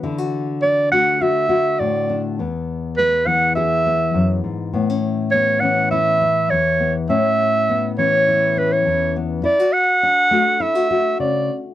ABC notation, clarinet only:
X:1
M:4/4
L:1/16
Q:1/4=102
K:A
V:1 name="Clarinet"
z4 d2 f2 e4 d3 z | z4 B2 f2 e6 z2 | z4 c2 f2 e4 c3 z | e6 c4 B c3 z2 |
d2 f6 e4 d3 z |]